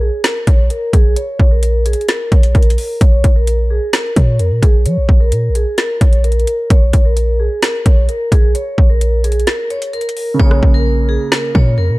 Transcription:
Already playing: 808-style bass A#1
0.01 vibraphone G#4
0.24 vibraphone A#4, snare, closed hi-hat
0.47 808-style bass A#1, vibraphone C#5, kick, closed hi-hat
0.70 vibraphone A#4, closed hi-hat
0.93 808-style bass A#1, vibraphone G#4, kick, closed hi-hat
1.16 vibraphone C#5, closed hi-hat
1.39 808-style bass A#1, kick
1.51 vibraphone A#4
1.63 closed hi-hat
1.86 vibraphone G#4, closed hi-hat
1.93 closed hi-hat
2.01 closed hi-hat
2.08 vibraphone A#4, snare, closed hi-hat
2.32 808-style bass A#1, vibraphone C#5, kick, closed hi-hat
2.43 closed hi-hat
2.55 808-style bass A#1, vibraphone A#4, kick, closed hi-hat
2.63 closed hi-hat
2.70 closed hi-hat
2.78 open hi-hat
3.01 808-style bass A#1, vibraphone C#5, kick, closed hi-hat
3.24 808-style bass A#1, kick, closed hi-hat
3.36 vibraphone A#4
3.47 closed hi-hat
3.70 vibraphone G#4
3.93 vibraphone A#4, snare, closed hi-hat
4.16 808-style bass A#2, vibraphone C#5, kick, closed hi-hat
4.39 808-style bass F2, vibraphone A#4, closed hi-hat
4.51 808-style bass A#2
4.63 808-style bass A#1, vibraphone G#4, kick, closed hi-hat
4.86 808-style bass F3, vibraphone C#5, closed hi-hat
4.97 808-style bass A#1
5.09 808-style bass A#1, kick
5.20 vibraphone A#4
5.32 808-style bass A#2, closed hi-hat
5.49 808-style bass A#1
5.55 vibraphone G#4, closed hi-hat
5.78 vibraphone A#4, snare, closed hi-hat
6.01 808-style bass A#1, vibraphone C#5, kick, closed hi-hat
6.13 closed hi-hat
6.24 vibraphone A#4, closed hi-hat
6.32 closed hi-hat
6.40 closed hi-hat
6.47 closed hi-hat
6.70 808-style bass A#1, vibraphone C#5, kick, closed hi-hat
6.93 808-style bass A#1, kick, closed hi-hat
7.05 vibraphone A#4
7.17 closed hi-hat
7.40 vibraphone G#4
7.62 vibraphone A#4, snare, closed hi-hat
7.86 808-style bass A#1, vibraphone C#5, kick, closed hi-hat
8.09 vibraphone A#4, closed hi-hat
8.32 808-style bass A#1, vibraphone G#4, kick, closed hi-hat
8.55 vibraphone C#5, closed hi-hat
8.78 808-style bass A#1, kick
8.90 vibraphone A#4
9.01 closed hi-hat
9.24 vibraphone G#4, closed hi-hat
9.32 closed hi-hat
9.40 closed hi-hat
9.47 vibraphone A#4, snare, closed hi-hat
9.70 vibraphone C#5, closed hi-hat
9.82 closed hi-hat
9.93 vibraphone A#4, closed hi-hat
10.01 closed hi-hat
10.09 closed hi-hat
10.17 open hi-hat
10.34 grand piano C#3
10.39 808-style bass A#1, grand piano A#3, vibraphone C#5, kick
10.45 grand piano G#4
10.51 cross-stick
10.63 808-style bass A#1, kick
10.74 vibraphone A#4
11.09 vibraphone G#4
11.32 vibraphone A#4, snare
11.55 808-style bass A#2, vibraphone C#5, kick
11.78 808-style bass F2, vibraphone A#4
11.90 808-style bass A#2

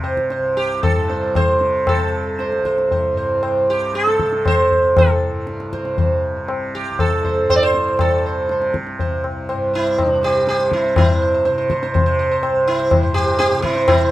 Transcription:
Already playing: tanpura C2 G2 C3
0.04 sitar C5, tabla na
0.17 tabla ke
0.30 sitar C5, tabla te
0.39 tanpura C2
0.57 sitar G4, tabla te
0.83 sitar A4, tabla na, tabla ge
0.95 tanpura G2
1.10 sitar C5, tabla te
1.35 sitar C5, tabla na, tabla ge
1.50 tanpura C3
1.61 tabla te
1.87 sitar A4, tabla na, tabla ge
2.04 tanpura C3
2.39 sitar C5, tabla te
2.52 tabla te
2.58 tanpura C2
2.65 sitar C5, tabla ke
2.78 tabla te
2.91 sitar C5, tabla tin, tabla ge
3.13 tanpura G2
3.17 sitar C5
3.43 sitar C5, tabla na
3.67 tanpura C3, sitar G4
3.94 sitar A4, tabla te
4.07 tabla te
4.19 tanpura C3, tabla ke
4.32 tabla te
4.46 sitar C5, tabla na, tabla ge
4.71 tanpura C2, tabla ge
4.97 sitar A4, tabla na, tabla ge
5.30 tanpura G2
5.47 tabla te
5.60 tabla te
5.73 sitar C5, tabla ke
5.82 tanpura C3, tabla te
5.98 sitar C5, tabla tin, tabla ge
6.37 tanpura C3
6.48 tabla na
6.75 sitar G4
6.89 tanpura C2
6.99 sitar A4, tabla na, tabla ge
7.24 sitar C5, tabla ge
7.43 tanpura G2
7.50 sitar C5, tabla na, tabla ge
7.56 sitar D5
7.63 sitar C5
7.74 tabla te
7.96 tanpura C3, tabla na, tabla ge
8.01 sitar A4
8.26 sitar C5
8.48 tanpura C3, sitar C5, tabla te
8.62 tabla te
8.74 tabla ke
8.87 tabla te
8.99 tanpura C2, sitar C5, tabla tin, tabla ge
9.24 tabla na
9.49 tanpura G2, sitar C5, tabla na
9.74 sitar E4 C5
9.98 sitar C5, tabla na, tabla ge
10.05 tanpura C3, sitar D4
10.23 sitar G4 C5, tabla te
10.47 sitar G4 C5, tabla te
10.56 tanpura C3, tabla te
10.72 sitar E4 C5, tabla ke
10.84 tabla te
10.96 tanpura G2, sitar E4, tabla na, tabla ge
11.10 sitar C5
11.22 sitar C5
11.34 sitar C5
11.45 tanpura C3, sitar C5, tabla te
11.58 sitar C5, tabla te
11.70 sitar C5, tabla ke
11.83 sitar C5, tabla te
11.94 sitar C5, tabla tin, tabla ge
11.99 tanpura C3
12.06 sitar C5
12.19 sitar C5
12.31 sitar C5
12.43 sitar C5, tabla na
12.51 tanpura C2
12.68 sitar E4, tabla na
12.79 sitar C5
12.91 sitar C5, tabla na, tabla ge
13.02 tanpura G2, sitar C5
13.14 sitar G4, tabla ge
13.26 sitar C5
13.39 sitar G4, tabla te
13.51 tanpura C3, sitar C5, tabla te
13.62 sitar E4, tabla ke
13.75 sitar C5, tabla te
13.88 sitar E4, tabla na, tabla ge
13.99 tanpura C3, sitar C5

